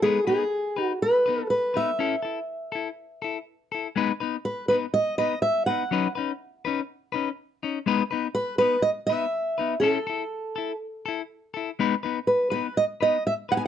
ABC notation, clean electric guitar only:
X:1
M:4/4
L:1/8
Q:1/4=123
K:G#phr
V:1 name="Clean electric guitar"
[G,B,DB] [B,DB] z [DB] z [B,DB] z [B,DB] | [CEA] [EA] z [EA] z [EA] z [EA] | [G,B,DB] [B,DB] z [B,DB] z [B,DB] z [B,DB] | [F,CDB] [CDB] z [CDB] z [CDB] z [CD] |
[G,B,DB] [B,DB] z [B,DB] z [B,DB] z [B,DB] | [CEA] [EA] z [EA] z [EA] z [EA] | [G,B,DB] [B,DB] z [B,DB] z [B,DB] z [B,DB] |]